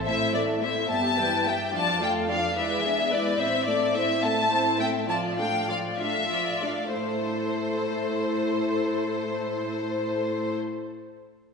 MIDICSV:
0, 0, Header, 1, 5, 480
1, 0, Start_track
1, 0, Key_signature, 0, "minor"
1, 0, Tempo, 555556
1, 53, Time_signature, 6, 3, 24, 8
1, 3412, Tempo, 579151
1, 4852, Tempo, 634921
1, 9276, End_track
2, 0, Start_track
2, 0, Title_t, "Violin section"
2, 0, Program_c, 0, 48
2, 52, Note_on_c, 0, 76, 57
2, 279, Note_off_c, 0, 76, 0
2, 295, Note_on_c, 0, 74, 46
2, 364, Note_off_c, 0, 74, 0
2, 543, Note_on_c, 0, 76, 52
2, 779, Note_off_c, 0, 76, 0
2, 783, Note_on_c, 0, 81, 64
2, 1256, Note_off_c, 0, 81, 0
2, 1272, Note_on_c, 0, 79, 50
2, 1509, Note_off_c, 0, 79, 0
2, 1512, Note_on_c, 0, 81, 64
2, 1745, Note_off_c, 0, 81, 0
2, 1757, Note_on_c, 0, 79, 49
2, 1826, Note_off_c, 0, 79, 0
2, 1986, Note_on_c, 0, 77, 51
2, 2220, Note_off_c, 0, 77, 0
2, 2225, Note_on_c, 0, 76, 60
2, 2689, Note_off_c, 0, 76, 0
2, 2701, Note_on_c, 0, 74, 54
2, 2931, Note_on_c, 0, 76, 61
2, 2936, Note_off_c, 0, 74, 0
2, 3170, Note_on_c, 0, 74, 53
2, 3171, Note_off_c, 0, 76, 0
2, 3407, Note_off_c, 0, 74, 0
2, 3413, Note_on_c, 0, 76, 58
2, 3645, Note_off_c, 0, 76, 0
2, 3645, Note_on_c, 0, 81, 62
2, 4117, Note_off_c, 0, 81, 0
2, 4121, Note_on_c, 0, 79, 54
2, 4187, Note_off_c, 0, 79, 0
2, 4366, Note_on_c, 0, 81, 58
2, 4433, Note_off_c, 0, 81, 0
2, 4610, Note_on_c, 0, 79, 53
2, 4851, Note_off_c, 0, 79, 0
2, 4860, Note_on_c, 0, 77, 48
2, 4920, Note_off_c, 0, 77, 0
2, 5089, Note_on_c, 0, 76, 50
2, 5557, Note_off_c, 0, 76, 0
2, 5571, Note_on_c, 0, 74, 40
2, 5809, Note_on_c, 0, 72, 42
2, 5811, Note_off_c, 0, 74, 0
2, 8532, Note_off_c, 0, 72, 0
2, 9276, End_track
3, 0, Start_track
3, 0, Title_t, "Violin section"
3, 0, Program_c, 1, 48
3, 53, Note_on_c, 1, 64, 41
3, 53, Note_on_c, 1, 72, 39
3, 279, Note_off_c, 1, 64, 0
3, 279, Note_off_c, 1, 72, 0
3, 296, Note_on_c, 1, 69, 36
3, 298, Note_on_c, 1, 76, 37
3, 538, Note_on_c, 1, 72, 32
3, 539, Note_off_c, 1, 69, 0
3, 540, Note_off_c, 1, 76, 0
3, 541, Note_on_c, 1, 64, 35
3, 781, Note_off_c, 1, 72, 0
3, 781, Note_on_c, 1, 67, 38
3, 782, Note_on_c, 1, 76, 36
3, 783, Note_off_c, 1, 64, 0
3, 1006, Note_off_c, 1, 67, 0
3, 1007, Note_off_c, 1, 76, 0
3, 1026, Note_on_c, 1, 71, 35
3, 1027, Note_on_c, 1, 79, 34
3, 1262, Note_on_c, 1, 67, 36
3, 1266, Note_off_c, 1, 71, 0
3, 1266, Note_on_c, 1, 76, 36
3, 1267, Note_off_c, 1, 79, 0
3, 1505, Note_off_c, 1, 67, 0
3, 1505, Note_on_c, 1, 74, 38
3, 1506, Note_off_c, 1, 76, 0
3, 1506, Note_on_c, 1, 65, 36
3, 1729, Note_off_c, 1, 65, 0
3, 1729, Note_off_c, 1, 74, 0
3, 1744, Note_on_c, 1, 69, 35
3, 1744, Note_on_c, 1, 77, 35
3, 1985, Note_off_c, 1, 69, 0
3, 1985, Note_off_c, 1, 77, 0
3, 1988, Note_on_c, 1, 65, 33
3, 1989, Note_on_c, 1, 74, 32
3, 2208, Note_off_c, 1, 74, 0
3, 2218, Note_on_c, 1, 74, 36
3, 2219, Note_on_c, 1, 71, 36
3, 2226, Note_off_c, 1, 65, 0
3, 2442, Note_off_c, 1, 74, 0
3, 2443, Note_off_c, 1, 71, 0
3, 2457, Note_on_c, 1, 68, 35
3, 2459, Note_on_c, 1, 76, 35
3, 2693, Note_on_c, 1, 74, 35
3, 2695, Note_off_c, 1, 68, 0
3, 2695, Note_on_c, 1, 71, 35
3, 2696, Note_off_c, 1, 76, 0
3, 2929, Note_on_c, 1, 72, 36
3, 2930, Note_off_c, 1, 72, 0
3, 2930, Note_on_c, 1, 72, 40
3, 2932, Note_off_c, 1, 74, 0
3, 2933, Note_off_c, 1, 71, 0
3, 3154, Note_off_c, 1, 72, 0
3, 3164, Note_on_c, 1, 76, 38
3, 3168, Note_on_c, 1, 69, 37
3, 3408, Note_off_c, 1, 76, 0
3, 3410, Note_off_c, 1, 69, 0
3, 3414, Note_on_c, 1, 72, 32
3, 3416, Note_off_c, 1, 72, 0
3, 3416, Note_on_c, 1, 72, 35
3, 3645, Note_on_c, 1, 69, 40
3, 3646, Note_off_c, 1, 72, 0
3, 3646, Note_on_c, 1, 76, 38
3, 3879, Note_off_c, 1, 69, 0
3, 3880, Note_off_c, 1, 76, 0
3, 3880, Note_on_c, 1, 72, 33
3, 3882, Note_off_c, 1, 72, 0
3, 3882, Note_on_c, 1, 72, 37
3, 4102, Note_off_c, 1, 72, 0
3, 4116, Note_on_c, 1, 69, 37
3, 4117, Note_on_c, 1, 76, 35
3, 4358, Note_off_c, 1, 69, 0
3, 4359, Note_off_c, 1, 76, 0
3, 4361, Note_on_c, 1, 65, 39
3, 4361, Note_on_c, 1, 74, 36
3, 4588, Note_off_c, 1, 65, 0
3, 4588, Note_off_c, 1, 74, 0
3, 4608, Note_on_c, 1, 77, 35
3, 4609, Note_on_c, 1, 69, 35
3, 4852, Note_on_c, 1, 65, 31
3, 4855, Note_off_c, 1, 69, 0
3, 4855, Note_off_c, 1, 77, 0
3, 4856, Note_on_c, 1, 74, 31
3, 5084, Note_off_c, 1, 65, 0
3, 5086, Note_off_c, 1, 74, 0
3, 5086, Note_on_c, 1, 69, 33
3, 5086, Note_on_c, 1, 77, 33
3, 5321, Note_off_c, 1, 69, 0
3, 5322, Note_off_c, 1, 77, 0
3, 5325, Note_on_c, 1, 65, 30
3, 5327, Note_on_c, 1, 74, 29
3, 5549, Note_off_c, 1, 65, 0
3, 5550, Note_off_c, 1, 74, 0
3, 5564, Note_on_c, 1, 69, 28
3, 5564, Note_on_c, 1, 77, 28
3, 5797, Note_off_c, 1, 69, 0
3, 5805, Note_on_c, 1, 72, 32
3, 5806, Note_on_c, 1, 69, 33
3, 5808, Note_off_c, 1, 77, 0
3, 8528, Note_off_c, 1, 72, 0
3, 8529, Note_off_c, 1, 69, 0
3, 9276, End_track
4, 0, Start_track
4, 0, Title_t, "Viola section"
4, 0, Program_c, 2, 48
4, 55, Note_on_c, 2, 60, 39
4, 56, Note_on_c, 2, 57, 38
4, 280, Note_off_c, 2, 60, 0
4, 281, Note_off_c, 2, 57, 0
4, 300, Note_on_c, 2, 57, 36
4, 303, Note_on_c, 2, 52, 37
4, 533, Note_off_c, 2, 57, 0
4, 541, Note_on_c, 2, 60, 34
4, 543, Note_off_c, 2, 52, 0
4, 543, Note_on_c, 2, 57, 36
4, 783, Note_off_c, 2, 60, 0
4, 784, Note_off_c, 2, 57, 0
4, 786, Note_on_c, 2, 55, 35
4, 787, Note_on_c, 2, 59, 39
4, 1009, Note_off_c, 2, 55, 0
4, 1010, Note_off_c, 2, 59, 0
4, 1025, Note_on_c, 2, 55, 32
4, 1026, Note_on_c, 2, 52, 32
4, 1254, Note_off_c, 2, 55, 0
4, 1264, Note_on_c, 2, 55, 31
4, 1266, Note_off_c, 2, 52, 0
4, 1266, Note_on_c, 2, 59, 31
4, 1502, Note_on_c, 2, 53, 39
4, 1504, Note_on_c, 2, 62, 38
4, 1506, Note_off_c, 2, 55, 0
4, 1506, Note_off_c, 2, 59, 0
4, 1727, Note_off_c, 2, 53, 0
4, 1729, Note_off_c, 2, 62, 0
4, 1746, Note_on_c, 2, 57, 35
4, 1747, Note_on_c, 2, 65, 37
4, 1982, Note_on_c, 2, 53, 36
4, 1984, Note_on_c, 2, 62, 36
4, 1986, Note_off_c, 2, 57, 0
4, 1986, Note_off_c, 2, 65, 0
4, 2222, Note_on_c, 2, 64, 36
4, 2223, Note_off_c, 2, 53, 0
4, 2224, Note_off_c, 2, 62, 0
4, 2225, Note_on_c, 2, 56, 40
4, 2444, Note_off_c, 2, 64, 0
4, 2446, Note_off_c, 2, 56, 0
4, 2466, Note_on_c, 2, 59, 35
4, 2466, Note_on_c, 2, 62, 33
4, 2700, Note_off_c, 2, 59, 0
4, 2700, Note_off_c, 2, 62, 0
4, 2702, Note_on_c, 2, 64, 35
4, 2703, Note_on_c, 2, 56, 32
4, 2929, Note_off_c, 2, 64, 0
4, 2937, Note_off_c, 2, 56, 0
4, 2939, Note_on_c, 2, 64, 39
4, 2941, Note_on_c, 2, 60, 39
4, 3158, Note_off_c, 2, 64, 0
4, 3159, Note_off_c, 2, 60, 0
4, 3177, Note_on_c, 2, 57, 36
4, 3178, Note_on_c, 2, 60, 35
4, 3403, Note_off_c, 2, 60, 0
4, 3413, Note_on_c, 2, 60, 35
4, 3414, Note_on_c, 2, 64, 38
4, 3415, Note_off_c, 2, 57, 0
4, 3635, Note_off_c, 2, 60, 0
4, 3644, Note_on_c, 2, 57, 39
4, 3645, Note_off_c, 2, 64, 0
4, 3645, Note_on_c, 2, 60, 38
4, 3870, Note_off_c, 2, 60, 0
4, 3879, Note_off_c, 2, 57, 0
4, 3880, Note_on_c, 2, 60, 35
4, 3881, Note_on_c, 2, 64, 35
4, 4101, Note_off_c, 2, 60, 0
4, 4101, Note_off_c, 2, 64, 0
4, 4118, Note_on_c, 2, 57, 36
4, 4119, Note_on_c, 2, 60, 36
4, 4359, Note_off_c, 2, 57, 0
4, 4360, Note_off_c, 2, 60, 0
4, 4360, Note_on_c, 2, 53, 37
4, 4362, Note_on_c, 2, 65, 39
4, 4587, Note_off_c, 2, 53, 0
4, 4589, Note_off_c, 2, 65, 0
4, 4602, Note_on_c, 2, 57, 35
4, 4604, Note_on_c, 2, 62, 35
4, 4852, Note_on_c, 2, 53, 32
4, 4852, Note_on_c, 2, 65, 33
4, 4853, Note_off_c, 2, 57, 0
4, 4853, Note_off_c, 2, 62, 0
4, 5084, Note_off_c, 2, 53, 0
4, 5084, Note_off_c, 2, 65, 0
4, 5084, Note_on_c, 2, 62, 33
4, 5085, Note_on_c, 2, 57, 33
4, 5317, Note_on_c, 2, 53, 29
4, 5317, Note_on_c, 2, 65, 27
4, 5321, Note_off_c, 2, 57, 0
4, 5321, Note_off_c, 2, 62, 0
4, 5545, Note_off_c, 2, 53, 0
4, 5545, Note_off_c, 2, 65, 0
4, 5559, Note_on_c, 2, 62, 28
4, 5561, Note_on_c, 2, 57, 26
4, 5795, Note_off_c, 2, 57, 0
4, 5804, Note_on_c, 2, 57, 32
4, 5805, Note_off_c, 2, 62, 0
4, 5806, Note_on_c, 2, 64, 33
4, 8527, Note_off_c, 2, 57, 0
4, 8529, Note_off_c, 2, 64, 0
4, 9276, End_track
5, 0, Start_track
5, 0, Title_t, "Cello section"
5, 0, Program_c, 3, 48
5, 51, Note_on_c, 3, 45, 45
5, 747, Note_off_c, 3, 45, 0
5, 780, Note_on_c, 3, 43, 44
5, 1490, Note_off_c, 3, 43, 0
5, 1503, Note_on_c, 3, 41, 44
5, 2223, Note_off_c, 3, 41, 0
5, 2226, Note_on_c, 3, 40, 42
5, 2934, Note_on_c, 3, 45, 46
5, 2935, Note_off_c, 3, 40, 0
5, 5603, Note_off_c, 3, 45, 0
5, 5805, Note_on_c, 3, 45, 36
5, 8528, Note_off_c, 3, 45, 0
5, 9276, End_track
0, 0, End_of_file